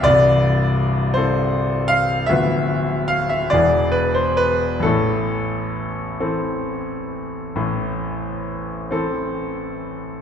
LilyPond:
<<
  \new Staff \with { instrumentName = "Grand piano" } { \time 12/8 \key a \minor \tempo 4. = 46 d''4. c''4 f''8 e''4 f''16 e''16 d''8 b'16 c''16 b'8 | a'1~ a'4. r8 | }
  \new Staff \with { instrumentName = "Grand piano" } { \clef bass \time 12/8 \key a \minor <c,, c,>4. <e c' a'>4. <d,, d, f b b'>4. <e,, e, e b gis'>4. | <a,, a,>4. <e c' a'>4. <a,, a,>4. <e c' a'>4. | }
>>